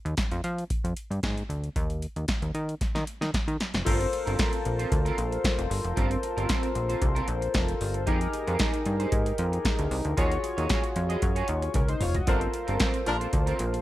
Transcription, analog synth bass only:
0.05 0.15 D#2 medium
0.32 0.41 F2 loud
0.44 0.64 F3 medium
0.84 0.94 F2 medium
1.11 1.20 G2 medium
1.23 1.43 G#2 loud
1.49 1.69 D2 medium
1.76 2.07 D#2 loud
2.16 2.26 D#2 medium
2.42 2.52 D#2 medium
2.55 2.75 D#3 medium
2.95 3.04 D#3 loud
3.21 3.31 D#3 medium
3.48 3.57 D#3 loud
3.74 3.83 F1 medium
3.87 4.07 G1 loud
4.27 4.36 G1 loud
4.66 4.86 A#1 medium
4.92 5.12 D2 loud
5.18 5.38 A#1 loud
5.58 5.68 F1 medium
5.70 5.81 G1 loud
5.84 5.94 F1 medium
5.97 6.17 G1 loud
6.37 6.47 G1 loud
6.75 6.96 A#1 medium
7.02 7.22 C2 loud
7.28 7.48 A#1 loud
7.54 7.75 F1 loud
7.81 8.09 G1 loud
8.07 8.27 F2 loud
8.48 8.57 F2 loud
8.86 9.06 G2 medium
9.12 9.33 G#2 medium
9.39 9.59 F2 loud
9.79 9.89 D2 medium
9.91 10.02 C2 loud
10.05 10.15 D2 medium
10.18 10.38 D#2 loud
10.58 10.67 D#2 loud
10.96 11.17 F2 loud
11.23 11.43 F#2 loud
11.49 11.69 D#2 loud
11.75 11.95 C#2 medium
12.02 12.22 F1 loud
12.28 12.48 G1 loud
12.68 12.78 G1 loud
13.07 13.27 A#1 medium
13.33 13.54 D2 loud
13.60 13.80 A#1 loud

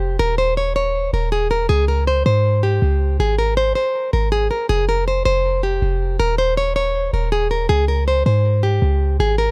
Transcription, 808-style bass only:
0.00 0.18 F1 loud
0.20 1.10 D#1 loud
1.13 1.67 D#1 loud
1.70 2.24 C#2 loud
2.26 2.80 G#2 loud
2.82 3.18 C#2 loud
3.20 3.74 G#1 loud
4.13 4.49 G#1 loud
4.70 5.24 F1 loud
5.26 5.80 F1 loud
5.82 6.18 F1 loud
6.20 7.10 D#1 loud
7.13 7.67 D#1 loud
7.70 8.24 C#2 loud
8.26 8.80 G#2 loud
8.82 9.18 C#2 loud
9.20 9.51 G#1 loud

